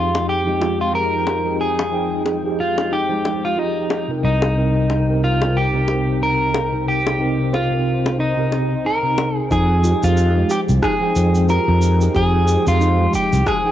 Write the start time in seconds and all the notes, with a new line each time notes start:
Already playing: F2 F3 G#3 C4 D#4 F4 G4 G#4 G5
0.15 high bongo
0.29 G4
0.45 F3 G#3 D#4 G4
0.61 F4, high bongo
0.81 F4
0.92 F3 D#4 G4 G#4 A#4
1.27 G4, high bongo
1.44 F3 D#4 G4 G#4
1.61 G#4
1.79 high bongo
1.91 F3 D#4 G#4 G5
2.25 G#4, high bongo
2.43 F3 D#4 G4 G#4
2.60 F4
2.78 high bongo
2.92 D#4 G4
3.09 F3 G#3 D#4 G4
3.25 high bongo
3.45 F4
3.56 F3 D#4 F4 G4 G#4
3.90 G4, high bongo
4.08 C3 C4 D#4 A#4
4.23 C2 C3 C4 D#4 A#4
4.42 high bongo
4.55 C3 C4 D#4 A#4
4.90 high bongo
5.07 C3 C4 D#4 A#4
5.24 F4
5.42 high bongo
5.57 G4
5.73 C3 C4 D#4 A#4
5.88 G4, high bongo
6.20 C3 C4 D#4 A#4
6.54 A#4, high bongo
6.72 C3 C4 D#4 A#4
6.87 G4 C5
7.07 high bongo
7.18 C3 C4 D#4 A#4
7.53 F4 C5, high bongo
7.70 C3 C4 D#4 A#4
8.06 high bongo
8.19 D#4
8.36 C3 C4 D#4 A#4
8.50 C3 C4 D#4 D#5, high bongo
8.85 D#4 A#4
9.03 C3 C4 D#4 A#4
9.18 A#4, high bongo
9.37 G#4
9.51 F2 F3 G#3 C4 D#4 G#4 G5, kick, cabasa
9.83 F3 D#4 F4 G4 G#4, cabasa
10.03 F2 F4, cabasa
10.17 cabasa
10.35 F3 G#3 D#4 G4
10.50 G4, cabasa
10.69 C2, cabasa
10.82 D#4 G#4, kick, cross-stick, cabasa
11.01 F3 D#4 G#4 G5
11.16 F2, cabasa
11.35 cabasa
11.47 F3 D#4 F4 G4 G#4 A#4, cabasa
11.68 F2
11.82 cabasa
12.00 F3 D#4 G4 G#4, cabasa
12.14 F2 G4 G#4, kick, cabasa
12.46 F3 D#4 G4 G#4, cabasa
12.67 F2 F4, cabasa
12.80 D#4, cabasa
12.98 F3 G#3 D#4 G4
13.14 G4, kick, cabasa
13.33 C2, cabasa
13.46 G#4, kick, cross-stick, cabasa
13.64 F3 D#4 G#4 G5